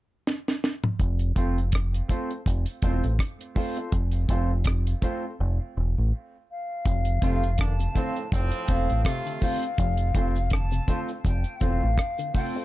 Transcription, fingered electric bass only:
1.00 F1
1.37 F1
2.47 F1
2.83 E1
3.04 A1
3.93 F1
4.29 F1
5.40 F1
5.77 E1
5.98 A1
6.86 F1
7.23 F1
8.33 F1
8.70 E1
8.91 A1
9.79 F1
10.15 F1
11.25 F1
11.62 E1
11.83 A1

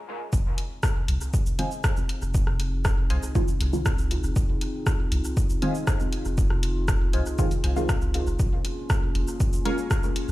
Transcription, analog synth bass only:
0.33 F1
1.08 C2
2.22 F1
3.10 C2
3.60 C2
4.23 F1
4.36 F1
5.12 C2
6.25 F1
7.13 C2
7.64 C2
8.27 F1
8.39 A#1
9.15 F1
10.29 A#1

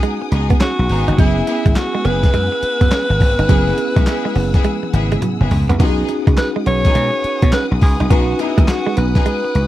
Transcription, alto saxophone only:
0.61 F#4
1.19 E4
1.77 F#4
2.06 B4
6.38 B4
6.67 C#5
7.53 B4
7.82 G#4
8.11 F#4
8.40 E4
8.69 F#4
8.98 B4

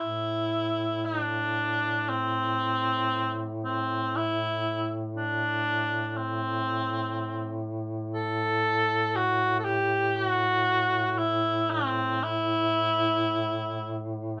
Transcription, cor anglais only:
Already playing: E4
1.05 D4
2.09 C4
3.64 C4
4.16 E4
5.17 D4
6.08 D4
6.17 C4
8.15 A4
9.16 F#4
9.59 A4
9.64 G4
10.16 F#4
11.11 F#4
11.18 E4
11.70 C4
12.24 E4
14.36 A3

